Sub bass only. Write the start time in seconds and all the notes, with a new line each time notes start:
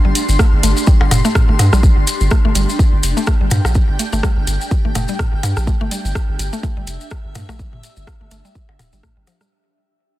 0.05 G1
0.29 G1
0.53 G1
0.63 G1
1.01 G1
1.11 F1
1.49 G1
1.59 G2
1.73 A#1
1.97 G1
2.21 G1
2.45 G1
2.55 G1
2.93 G1
3.03 F1
3.41 G1
3.51 G2
3.65 A#1
3.89 G1
4.13 G1
4.37 G1
4.47 G1
4.85 G1
4.95 F1
5.33 G1
5.43 G2
5.57 A#1
5.81 G1
6.05 G1
6.29 G1
6.39 G1
6.77 G1
6.87 F1
7.25 G1
7.35 G2
7.49 A#1
7.73 G1
7.97 G1
8.21 G1
8.31 G1
8.69 G1
8.79 D1
8.93 G1
9.17 G1